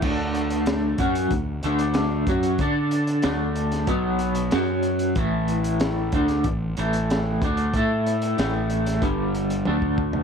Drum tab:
CC |x---------------|----------------|----------------|----------------|
HH |--xxx-xxx-xxx-xx|x-xxx-xxx-xxx-xx|x-xxx-xxx-xxx-xx|x-xxx-xxx-xx----|
SD |----o-------o---|----o--o----o---|----o--o----o---|----o--o--------|
T1 |----------------|----------------|----------------|------------o---|
FT |----------------|----------------|----------------|---------------o|
BD |o-----o-o-----o-|o-------o-------|o-----o-o-----o-|o-------o----oo-|